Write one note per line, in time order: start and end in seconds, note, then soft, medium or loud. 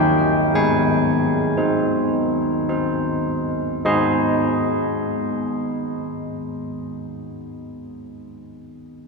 0.00 0.52 D#3 medium
0.00 0.51 D#4 soft
0.00 0.51 C#5 soft
0.00 0.50 G5 medium
0.54 1.55 G#3 soft
0.54 3.21 G#5 medium
1.57 2.63 D#4 soft
1.57 2.63 C5 soft
2.69 3.80 D#4 soft
2.69 3.80 C5 soft
3.85 8.47 G#3 soft
3.85 8.47 D#4 soft
3.85 8.48 C5 soft
3.85 8.48 D#5 soft
3.85 8.48 G#5 soft
3.85 8.48 C6 soft